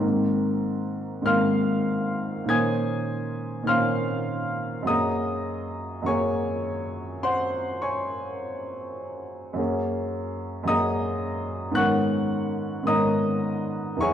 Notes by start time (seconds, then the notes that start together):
Already playing: G#2
0.00 D#3 A#3 C4 A#4
1.22 G#2 D#3 A#3 F6
1.26 C4 A#4 F5 C6
2.44 A#2 D#3 A#3 C#4
2.49 C5 G#5 D#6 G#6
3.63 A#2 D#3 A#3 C#4 F6
3.68 C5 F5 C6
4.83 F#2 F#3 A#3
4.87 C#4 G#4 D#5 A#5 D#6
6.02 F#2 F#3 A#3 C#4
6.06 G#4 C#5 G#5 C#6
7.23 C5 F#5 C6
7.82 C#5 G#5 C#6
9.53 F#2 F#3 A#3 C#4
9.58 G#4
10.63 F#2 F#3 A#3 C#4
10.68 G#4 D#5 A#5 D#6
11.71 G#2 D#3 B3 C#4 F#6
11.76 A#4 F#5 C#6
12.83 G#2 D#3 B3 C#4 D#6
12.88 A#4 D#5 A#5
13.96 E2 E3 F#3
14.01 E4 G#4 C#5 G#5 C#6